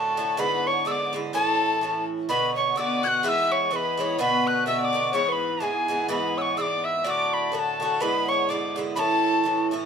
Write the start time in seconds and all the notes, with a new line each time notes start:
Already playing: A2 D3 A3 F#4 A4 A5
0.17 A2 D3 A3 F#4
0.37 G#2 D3 B3 E4 B4 B5
0.67 C#5 C#6
0.85 G#2 D3 B3 E4 D5 E6
0.92 D6
1.13 G#2 D3 B3 E4
1.33 A2 E3 C#4 E4 A4 A5
1.81 A2 E3 C#4 E4
2.29 B2 D3 B3 F#4 B4 B5
2.56 C#5 C#6
2.76 B2 D3 B3 F#4 D5 E6
2.81 D6
3.03 B2 D3 B3 F#4 F#5 G#6
3.08 F#6
3.19 F#5
3.23 G#2 E3 B3 E4 E5 F#6
3.29 E6
3.52 C#5 C#6
3.71 G#2 E3 B3 E4 B4 C#6
3.76 B5
3.97 G#2 E3 B3 E4 C#5
4.19 B2 D3 B3 F#4 B4 B5
4.47 F#6
4.66 B2 D3 B3 F#4 E5 E6
4.80 D5 E6
4.85 D6
4.93 B2 D3 B3 F#4
5.13 G#2 E3 B3 E4 C#5 C#6
5.28 B4 C#6
5.32 B5
5.60 G#2 E3 B3 E4 G#4 G#5
5.88 G#2 E3 B3 E4
6.08 G#2 E3 B3 E4 B4 B5
6.37 C#5 E6
6.42 C#6
6.56 G#2 E3 B3 E4 D5 E6
6.62 D6
6.84 E5 E6
7.04 A2 D3 A3 F#4 D5 E6
7.10 D6
7.34 B5
7.47 B5
7.52 A2 D3 A3 F#4 A4 B5
7.59 A5
7.80 A2 D3 A3 F#4 A4
8.00 G#2 D3 B3 E4 B4 B5
8.28 C#5 C#6
8.49 G#2 D3 B3 E4 D5 D6
8.76 G#2 D3 B3 E4
8.96 A2 E3 C#4 E4 A4 A5 B5
9.44 A2 E3 C#4 E4
9.71 A2 E3 C#4 E4